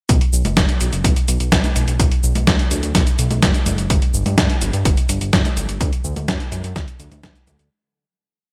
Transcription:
0.09 analog synth bass B1, kick, closed hi-hat, cabasa
0.21 closed hi-hat
0.33 analog synth bass B1, cabasa
0.45 analog synth bass F#1, closed hi-hat, high conga, cabasa
0.57 analog synth bass F#1, kick, snare, closed hi-hat, cabasa
0.69 closed hi-hat
0.81 analog synth bass B1, closed hi-hat, cabasa
0.93 analog synth bass F#1, closed hi-hat, cabasa
1.04 analog synth bass B1, kick, closed hi-hat, cabasa
1.16 closed hi-hat, cabasa
1.28 analog synth bass B1, closed hi-hat, cabasa
1.40 analog synth bass B1, closed hi-hat, cabasa
1.52 analog synth bass B1, kick, snare, closed hi-hat, cabasa
1.64 closed hi-hat, high conga, cabasa
1.76 analog synth bass B1, closed hi-hat, cabasa
1.88 analog synth bass B1, closed hi-hat, cabasa
2.00 analog synth bass B1, kick, closed hi-hat, cabasa
2.12 closed hi-hat
2.23 analog synth bass B1, cabasa
2.35 analog synth bass B1, closed hi-hat, high conga, cabasa
2.47 analog synth bass D2, kick, snare, closed hi-hat, cabasa
2.59 closed hi-hat
2.71 analog synth bass D2, closed hi-hat, cabasa
2.83 analog synth bass D2, closed hi-hat, cabasa
2.95 analog synth bass B1, kick, snare, closed hi-hat, cabasa
3.07 closed hi-hat, cabasa
3.19 analog synth bass B1, closed hi-hat, cabasa
3.31 analog synth bass B1, closed hi-hat, high conga, cabasa
3.42 analog synth bass F#1, kick, snare, closed hi-hat, cabasa
3.54 closed hi-hat, cabasa
3.66 analog synth bass F#1, closed hi-hat, high conga, cabasa
3.78 analog synth bass F#1, closed hi-hat, cabasa
3.90 analog synth bass G1, kick, closed hi-hat, cabasa
4.02 closed hi-hat
4.14 analog synth bass G1, cabasa
4.26 analog synth bass G2, closed hi-hat, high conga, cabasa
4.38 analog synth bass G2, kick, snare, closed hi-hat, cabasa
4.50 closed hi-hat
4.62 analog synth bass G1, closed hi-hat, cabasa
4.73 analog synth bass G2, closed hi-hat, cabasa
4.85 analog synth bass G1, kick, closed hi-hat, cabasa
4.97 closed hi-hat, cabasa
5.09 analog synth bass G1, closed hi-hat, cabasa
5.21 analog synth bass G1, closed hi-hat, cabasa
5.33 analog synth bass G1, kick, snare, closed hi-hat, cabasa
5.45 closed hi-hat, high conga, cabasa
5.57 analog synth bass G1, closed hi-hat, cabasa
5.69 analog synth bass G1, closed hi-hat, cabasa
5.81 analog synth bass D2, kick, closed hi-hat, cabasa
5.93 closed hi-hat, cabasa
6.04 analog synth bass D2, cabasa
6.16 analog synth bass D2, closed hi-hat, high conga, cabasa
6.28 analog synth bass F#2, kick, snare, closed hi-hat, cabasa
6.40 closed hi-hat
6.52 analog synth bass F#2, closed hi-hat, cabasa
6.64 analog synth bass F#2, closed hi-hat, cabasa
6.76 analog synth bass D2, kick, snare, closed hi-hat, cabasa
6.88 closed hi-hat, cabasa
7.00 analog synth bass D2, closed hi-hat, cabasa
7.11 analog synth bass D2, closed hi-hat, high conga, cabasa
7.23 analog synth bass D2, kick, snare, closed hi-hat, cabasa
7.35 closed hi-hat, cabasa
7.47 analog synth bass D2, closed hi-hat, high conga, cabasa
7.59 analog synth bass D2, closed hi-hat, cabasa

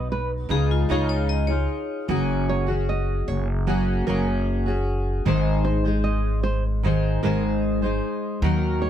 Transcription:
Already playing: upright bass B1, steel-string acoustic guitar F#3 B3 D#4 B4
0.12 nylon-string guitar B4
0.49 upright bass C#2, steel-string acoustic guitar C#3 G#3 D#4 F4 G#4, vibraphone G#4
0.71 vibraphone F4
0.89 upright bass C#2, steel-string acoustic guitar C#3 G#3 D#4 F4 G#4, vibraphone G#4, nylon-string guitar C#5
1.09 vibraphone C#5
1.29 vibraphone D#5
1.47 steel-string acoustic guitar D#4 F4 G#4, vibraphone C#5
2.08 upright bass F#1, steel-string acoustic guitar F#3 A#3 C#4 F#4 G#4
2.49 nylon-string guitar C#5
2.66 steel-string acoustic guitar C#4 F#4 G#4
2.89 nylon-string guitar D#5
3.28 upright bass F#1, nylon-string guitar C#5
3.67 steel-string acoustic guitar F#3 A#3 C#4 F#4 G#4
4.07 upright bass F#1, steel-string acoustic guitar F#3 A#3 C#4 F#4 G#4, nylon-string guitar A#4
4.66 steel-string acoustic guitar C#4 F#4 G#4
5.25 upright bass G#1, steel-string acoustic guitar G#2 D#3 G#3 D#4 G#4 C5
5.65 nylon-string guitar C5
5.85 steel-string acoustic guitar G#3 D#4 G#4 C5
6.04 nylon-string guitar D#5
6.43 nylon-string guitar C5
6.83 steel-string acoustic guitar G#2 D#3 G#3 D#4 G#4 C5
7.23 upright bass G#1, steel-string acoustic guitar G#2 D#3 G#3 D#4 G#4 C5, nylon-string guitar A#4
7.82 steel-string acoustic guitar G#3 D#4 G#4 C5
8.42 upright bass D#2, steel-string acoustic guitar D#3 F#3 D#4 F#4 A#4
8.82 nylon-string guitar C#5

